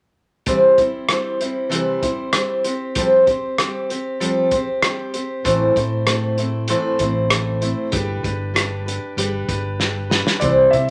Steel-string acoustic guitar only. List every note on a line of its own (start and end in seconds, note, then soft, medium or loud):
0.46 0.78 C3 medium
0.46 0.78 E3 medium
0.46 0.78 G3 medium
0.46 0.78 C4 medium
0.46 0.77 E4 medium
0.46 0.77 C5 medium
0.78 1.08 G3 soft
0.78 1.09 C4 soft
0.78 1.09 E4 soft
0.78 1.09 C5 medium
1.09 1.40 G3 medium
1.09 1.41 C4 medium
1.09 1.40 E4 medium
1.09 1.39 C5 medium
1.40 1.69 G3 soft
1.40 1.70 C4 soft
1.40 1.70 E4 medium
1.40 1.69 C5 medium
1.69 2.02 C3 medium
1.69 2.02 E3 medium
1.69 2.02 G3 medium
1.69 2.02 C4 medium
1.69 2.02 E4 medium
1.69 2.01 C5 medium
2.02 2.32 G3 soft
2.02 2.33 C4 soft
2.02 2.34 E4 soft
2.02 2.34 C5 medium
2.33 2.65 G3 medium
2.33 2.65 C4 medium
2.33 2.65 E4 medium
2.33 2.63 C5 medium
2.65 2.95 C4 soft
2.65 2.95 G4 soft
2.65 2.96 C5 medium
2.95 3.27 F3 medium
2.95 3.27 G3 medium
2.95 3.27 C4 medium
2.95 3.26 G4 medium
2.95 3.25 C5 medium
3.26 3.57 C4 soft
3.26 3.58 G4 soft
3.26 3.58 C5 medium
3.58 3.89 G3 medium
3.58 3.89 C4 medium
3.58 3.90 G4 medium
3.58 3.88 C5 medium
3.90 4.19 C4 soft
3.90 4.20 G4 soft
3.90 4.19 C5 medium
4.20 4.52 F3 medium
4.20 4.52 G3 medium
4.20 4.52 C4 medium
4.20 4.52 G4 medium
4.20 4.50 C5 medium
4.51 4.82 C4 soft
4.51 4.82 G4 medium
4.51 4.83 C5 medium
4.82 5.14 G3 medium
4.82 5.14 C4 medium
4.82 5.14 G4 medium
4.82 5.13 C5 medium
5.14 5.44 C4 soft
5.14 5.45 G4 soft
5.14 5.44 C5 medium
5.44 5.76 A2 medium
5.44 5.76 E3 medium
5.44 5.76 A3 medium
5.44 5.76 C4 medium
5.44 5.75 E4 medium
5.44 5.75 C5 medium
5.76 6.05 A3 soft
5.76 6.05 C4 soft
5.76 6.06 E4 soft
5.76 6.07 C5 soft
6.06 6.38 A3 medium
6.06 6.38 C4 medium
6.06 6.37 E4 medium
6.06 6.36 C5 medium
6.37 6.68 A3 soft
6.37 6.68 C4 soft
6.37 6.69 E4 soft
6.37 6.69 C5 medium
6.69 7.00 A2 medium
6.69 7.00 E3 medium
6.69 7.01 A3 medium
6.69 7.00 C4 medium
6.69 7.00 E4 loud
6.69 6.99 C5 medium
7.00 7.28 A3 soft
7.00 7.29 C4 medium
7.00 7.30 E4 medium
7.00 7.30 C5 medium
7.30 7.62 A3 medium
7.30 7.62 C4 medium
7.30 7.61 E4 medium
7.30 7.60 C5 medium
7.61 7.91 A3 soft
7.61 7.92 C4 soft
7.61 7.92 E4 medium
7.61 7.93 C5 medium
7.91 8.24 G3 medium
7.91 8.24 D4 medium
7.91 8.23 G4 medium
7.91 8.22 B4 medium
8.23 8.53 D4 soft
8.23 8.54 G4 soft
8.23 8.54 B4 soft
8.54 8.86 G3 medium
8.54 8.86 D4 medium
8.54 8.86 G4 medium
8.54 8.85 B4 medium
8.86 9.17 D4 soft
8.86 9.17 G4 medium
8.86 9.17 B4 medium
9.17 9.49 G3 medium
9.17 9.49 D4 medium
9.17 9.48 G4 medium
9.17 9.47 B4 medium
9.48 9.79 D4 soft
9.48 9.80 G4 medium
9.48 9.80 B4 medium
9.80 10.11 G3 medium
9.80 10.10 D4 medium
9.80 10.10 G4 medium
9.80 10.09 B4 medium
10.10 10.41 D4 soft
10.10 10.42 G4 medium
10.10 10.42 B4 medium
10.41 10.73 C3 medium
10.41 10.73 E3 medium
10.41 10.73 G3 medium
10.41 10.73 C4 medium
10.41 10.73 E4 medium
10.41 10.72 C5 medium
10.73 10.90 G3 soft
10.73 10.90 C4 soft
10.73 10.90 E4 soft
10.73 10.90 C5 medium